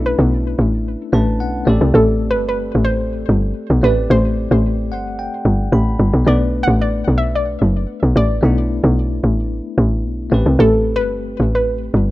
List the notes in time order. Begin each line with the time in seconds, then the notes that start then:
Already playing: B1 A3 C#4 D4 E4
0.06 B4
0.19 B1
0.59 A1
1.12 A1 A3 C#4 D4 B4 A5
1.40 B1 F#5
1.65 A1 A3 C4 G4 D5
1.69 A4
1.81 C2
1.94 A1 A4
2.31 B4
2.35 G1
2.49 B4
2.75 A1
2.85 C5
3.29 G1
3.70 B1
3.82 A1 A3 C4 G4 B4
3.86 D5
4.10 A1 C5
4.51 A1
4.91 G1 F#5
5.19 G5
5.45 G1
5.72 A1 B5
5.99 G1
6.13 B1
6.25 B1 A3 B3 D4 B4 D5
6.63 F#5
6.67 A1
6.82 D5
7.08 B1
7.18 E5
7.35 D5
7.62 F#1
8.03 B1
8.16 A1 D5
8.41 B1 A3 B3 D4 E4
8.84 B1
9.24 A1
9.78 A1
10.05 B1
10.30 A1 A3 C4 G4 B4
10.46 C2
10.59 A1 A4
10.96 G1 B4
11.40 A1
11.55 B4
11.94 G1